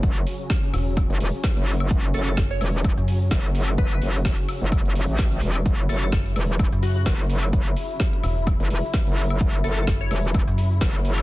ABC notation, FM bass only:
X:1
M:4/4
L:1/16
Q:"Swing 16ths" 1/4=128
K:F#m
V:1 name="FM bass" clef=bass
z6 E,,,3 z6 z | z4 F,,,2 z3 F,,3 z4 | z16 | z4 F,,,2 z3 F,,3 z4 |
z6 E,,,3 z6 z | z4 F,,,2 z3 F,,3 z4 |]